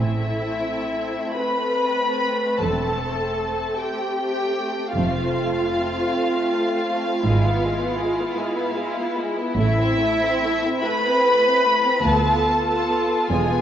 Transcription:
0.00 1.11 A1 soft
0.00 1.11 A2 soft
0.00 0.19 A3 soft
0.00 4.91 C4 soft
0.00 1.32 E4 soft
0.00 1.31 E5 soft
0.20 0.42 A3 soft
0.44 0.65 A3 soft
0.66 0.89 A3 soft
0.90 1.11 A3 soft
1.12 1.34 A3 soft
1.35 1.55 A3 soft
1.35 2.61 B4 soft
1.35 2.58 B5 medium
1.57 1.78 A3 soft
1.79 1.99 A3 soft
2.01 2.21 A3 soft
2.23 2.42 A3 soft
2.43 2.62 A3 soft
2.59 3.56 E1 soft
2.59 3.57 E2 soft
2.59 3.79 A4 soft
2.59 3.77 A5 soft
2.65 2.81 A3 soft
2.85 3.02 A3 soft
3.03 3.21 A3 soft
3.22 3.40 A3 soft
3.42 3.58 A3 soft
3.60 3.77 A3 soft
3.78 3.98 A3 soft
3.78 4.94 G4 soft
3.78 4.94 G5 medium
4.00 4.18 A3 soft
4.19 4.36 A3 soft
4.38 4.55 A3 soft
4.56 4.75 A3 soft
4.76 4.94 A3 soft
4.95 5.91 F1 medium
4.95 5.91 F2 soft
4.95 5.14 A3 soft
4.95 7.21 C4 soft
4.95 9.13 F4 medium
4.95 9.13 F5 medium
5.16 5.35 A3 soft
5.37 5.56 A3 soft
5.57 5.74 A3 soft
5.75 5.92 A3 soft
5.93 6.12 A3 soft
6.13 6.31 A3 soft
6.33 6.49 A3 soft
6.50 6.68 A3 soft
6.69 6.86 A3 soft
6.87 7.05 A3 soft
7.07 7.25 A3 soft
7.24 8.19 G#1 medium
7.24 8.19 G#2 medium
7.24 7.42 G#3 soft
7.24 12.06 E4 soft
7.45 7.64 B3 soft
7.64 7.83 G#3 soft
7.83 8.02 B3 soft
8.01 8.20 G#3 soft
8.20 8.39 B3 soft
8.37 8.58 G#3 soft
8.56 8.77 B3 soft
8.76 8.97 G#3 soft
8.98 9.17 B3 soft
9.17 9.36 G#3 soft
9.36 9.56 B3 soft
9.56 10.62 A1 medium
9.56 10.62 A2 medium
9.56 9.76 A3 soft
9.56 10.81 E4 medium
9.56 10.80 E5 medium
9.78 9.98 C4 soft
9.98 10.19 A3 soft
10.22 10.42 C4 soft
10.43 10.64 A3 soft
10.64 10.85 C4 soft
10.83 11.05 A3 soft
10.83 12.05 B4 medium
10.83 12.05 B5 medium
11.07 11.26 C4 soft
11.27 11.46 A3 soft
11.46 11.66 C4 soft
11.67 11.86 A3 soft
11.84 12.05 C4 soft
12.04 13.08 D2 soft
12.04 13.08 D2 medium
12.04 12.25 B3 soft
12.04 13.61 F4 soft
12.04 13.32 A4 medium
12.04 13.32 A5 medium
12.26 12.45 B3 soft
12.47 12.66 B3 soft
12.67 12.86 B3 soft
12.88 13.07 B3 soft
13.08 13.31 B3 soft
13.30 13.61 E1 soft
13.30 13.61 E2 medium
13.30 13.51 G#3 soft
13.30 13.61 G#4 medium
13.30 13.61 G#5 medium
13.52 13.61 B3 soft

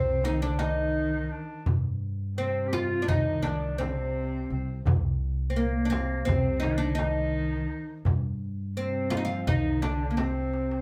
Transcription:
0.00 1.27 C2 medium
0.00 0.25 C3 medium
0.00 0.24 C4 medium
0.00 0.43 C4 medium
0.23 0.44 D#3 medium
0.23 0.42 D#4 medium
0.23 darbuka tek medium
0.23 frame drum medium
0.41 0.61 D3 medium
0.41 0.61 D4 medium
0.41 0.59 D4 medium
0.59 1.66 D#3 medium
0.59 1.62 D#4 medium
0.59 1.30 D#4 loud
0.59 darbuka tek medium
0.59 frame drum medium
1.31 1.64 D4 medium
1.66 3.04 G2 medium
1.66 frame drum medium
1.66 darbuka dum loud
2.37 3.10 C3 medium
2.37 2.69 C4 medium
2.37 2.72 C4 medium
2.67 2.75 G4 medium
2.73 3.02 F4 loud
2.73 3.10 F4 medium
2.73 darbuka tek medium
2.73 frame drum medium
3.02 3.08 D4 medium
3.08 4.46 C2 medium
3.08 3.81 D#3 medium
3.08 3.42 D#4 medium
3.08 3.46 D#4 medium
3.08 darbuka dum medium
3.08 frame drum medium
3.43 3.80 D4 medium
3.43 3.82 D4 medium
3.43 darbuka tek medium
3.43 frame drum medium
3.78 4.86 C3 medium
3.78 4.81 C4 medium
3.78 4.51 C4 medium
3.78 darbuka tek medium
3.78 frame drum medium
4.50 4.83 C2 medium
4.50 4.84 C4 medium
4.86 6.24 C2 loud
4.86 darbuka dum medium
4.86 frame drum loud
5.50 5.57 C4 medium
5.56 5.87 A#2 medium
5.56 5.86 A#3 medium
5.56 6.29 A#3 medium
5.85 5.93 D3 medium
5.85 5.90 D4 medium
5.90 6.27 C3 medium
5.90 6.24 C4 medium
5.90 darbuka tek medium
5.90 frame drum medium
6.25 7.65 C2 loud
6.25 6.64 C3 medium
6.25 6.59 C4 medium
6.25 6.66 C4 medium
6.25 darbuka dum medium
6.25 frame drum medium
6.60 6.82 D#3 medium
6.60 6.77 D#4 medium
6.60 darbuka tek medium
6.60 frame drum medium
6.64 6.99 D#4 medium
6.78 7.00 D3 medium
6.78 6.95 D4 medium
6.95 8.05 D#3 medium
6.95 7.99 D#4 medium
6.99 8.01 D#4 medium
6.99 darbuka tek medium
6.99 frame drum medium
8.05 9.43 G2 medium
8.05 darbuka dum loud
8.05 frame drum medium
8.76 9.27 C3 medium
8.76 9.10 C4 medium
8.76 9.44 C4 medium
8.76 darbuka ka soft
9.10 9.16 F4 medium
9.10 darbuka tek medium
9.10 frame drum medium
9.17 9.24 D#4 medium
9.25 9.48 F3 medium
9.25 9.47 F4 medium
9.46 10.81 C2 medium
9.46 9.83 D#3 medium
9.46 9.82 D#4 medium
9.46 9.85 D#4 medium
9.46 darbuka dum medium
9.46 frame drum medium
9.82 10.19 D3 medium
9.82 10.12 D4 medium
9.82 10.20 D4 medium
9.82 darbuka tek medium
9.82 frame drum medium
10.11 10.17 A#3 soft
10.17 10.81 C3 medium
10.17 10.81 C4 medium
10.17 darbuka tek medium
10.17 frame drum medium
10.53 darbuka tek soft
10.71 darbuka ka medium

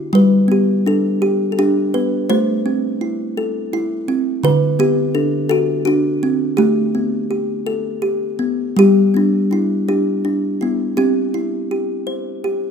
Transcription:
0.00 0.13 E4 medium
0.00 0.13 F#4 medium
0.13 1.58 G3 medium
0.13 0.52 B4 medium
0.48 1.93 B3 medium
0.48 0.88 G4 medium
0.86 1.58 D4 medium
0.86 1.24 A4 medium
1.22 1.58 G4 medium
1.52 1.59 A4 medium
1.59 2.31 D4 medium
1.59 1.96 G4 medium
1.94 2.31 B3 medium
1.94 2.31 B4 medium
2.30 3.74 A3 medium
2.30 2.98 C5 loud
2.66 4.07 C4 medium
3.01 3.72 E4 medium
3.37 4.44 A4 medium
3.73 4.45 E4 medium
4.08 4.44 C4 medium
4.43 5.15 D3 medium
4.43 4.81 B4 loud
4.79 5.15 B3 medium
4.79 5.17 G4 medium
5.15 5.86 D4 medium
5.15 5.48 A4 medium
5.49 5.84 F#4 medium
5.49 5.87 A4 medium
5.85 6.59 D4 medium
5.85 6.54 F#4 medium
6.23 6.59 C4 medium
6.57 8.04 A3 medium
6.57 7.29 G4 medium
6.95 8.38 B3 medium
7.31 8.01 G4 medium
7.66 8.77 A4 medium
8.02 8.77 G4 medium
8.39 8.77 B3 medium
8.77 10.25 G3 medium
8.77 9.17 G4 loud
9.14 10.61 B3 medium
9.14 9.50 D4 medium
9.51 9.87 D4 medium
9.51 9.90 E4 medium
9.89 10.24 D4 medium
9.89 10.96 G4 medium
10.25 10.98 D4 medium
10.61 10.98 B3 medium
10.61 10.99 E4 medium
10.97 12.43 C4 medium
10.97 11.66 G4 medium
11.34 12.71 E4 medium
11.71 12.43 G4 medium
12.07 12.71 C5 medium
12.44 12.71 G4 medium

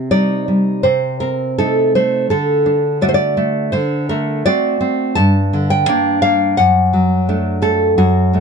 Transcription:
0.00 0.82 C3 medium
0.00 0.86 C4 soft
0.11 0.47 G3 soft
0.11 0.81 D#4 medium
0.11 0.82 D5 medium
0.48 0.85 G3 soft
0.83 2.26 C3 medium
0.83 1.19 C5 medium
1.20 2.31 C4 soft
1.20 1.56 A#4 medium
1.58 1.95 A3 medium
1.58 2.27 D#4 medium
1.58 1.94 A4 medium
1.95 2.31 A3 medium
1.95 2.30 C5 medium
2.30 3.70 D3 medium
2.30 2.99 A4 medium
2.66 3.74 D4 medium
3.02 3.36 A3 medium
3.02 3.71 F#4 medium
3.02 3.08 D5 medium
3.09 3.14 C5 medium
3.14 3.71 D5 medium
3.37 3.74 A3 medium
3.72 4.46 D3 medium
3.72 4.08 C5 medium
4.09 5.17 A3 medium
4.09 4.44 A#4 medium
4.46 4.79 C4 medium
4.46 5.13 F#4 medium
4.46 5.14 D5 loud
4.81 5.16 C4 medium
5.15 6.54 G2 medium
5.15 5.67 A5 loud
5.53 5.89 D3 medium
5.70 6.21 G5 medium
5.88 6.22 A#3 medium
5.88 6.55 D4 medium
6.22 6.58 A#3 medium
6.22 6.56 F5 loud
6.57 7.95 F#2 medium
6.57 7.25 F#5 medium
6.93 7.99 F#3 medium
7.29 7.61 A3 medium
7.29 7.95 D4 medium
7.62 7.97 A3 medium
7.62 7.96 A4 medium
7.98 8.40 F#2 medium
7.98 8.40 F#4 medium
8.33 8.40 A3 soft
8.33 8.40 D4 medium

